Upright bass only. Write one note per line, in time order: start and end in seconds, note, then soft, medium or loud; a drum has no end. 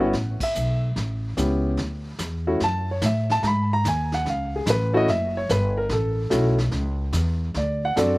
0.00 0.13 G1 medium
0.14 0.40 A1 medium
0.41 muted upright bass stroke soft
0.56 0.95 B1 medium
0.96 1.36 A1 medium
1.38 1.78 C#2 medium
1.79 2.18 D2 medium
2.19 2.59 E2 medium
2.61 3.01 F#2 medium
3.02 3.42 A2 medium
3.43 3.83 G#2 medium
3.84 4.24 D#2 medium
4.25 4.65 C#2 medium
4.66 5.06 A1 loud
5.07 5.48 F#1 medium
5.50 5.89 G1 medium
5.90 6.30 A1 medium
6.31 6.71 B1 medium
6.72 7.12 C#2 medium
7.13 7.53 E2 medium
7.55 7.95 D2 medium
7.97 8.18 F#2 medium